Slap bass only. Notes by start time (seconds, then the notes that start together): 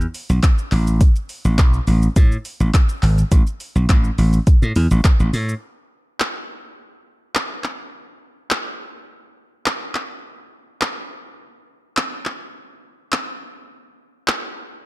0.30 B1
0.72 A1
1.45 A1
1.58 B1
1.87 A1
2.16 A2
2.60 A1
3.03 G#1
3.32 A1
3.76 B1
4.18 A1
4.62 A2
4.76 E2
4.91 A1
5.20 A1
5.33 A2